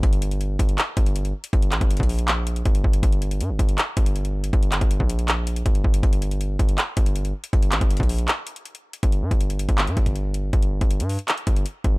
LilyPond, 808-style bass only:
\new Staff \with { instrumentName = "808-style bass" } { \clef bass \time 4/4 \key g \minor \tempo 4 = 160 g,,4. g,,8 r8 g,,4 r8 | g,,8 a,,16 g,,8 bes,,4.~ bes,,16 g,,8 g,,8 | g,,4 g,16 g,,16 g,,8 r8 g,,4. | g,,8. g,,8 bes,,4.~ bes,,16 g,,8 g,,8 |
g,,4. g,,8 r8 g,,4 r8 | g,,8 a,,16 g,,8 bes,,8. r2 | g,,8 g,16 g,,4 g,,8 g,16 g,,4. | g,,8. g,,8 g,8 r8. g,,8 r8 g,,8 | }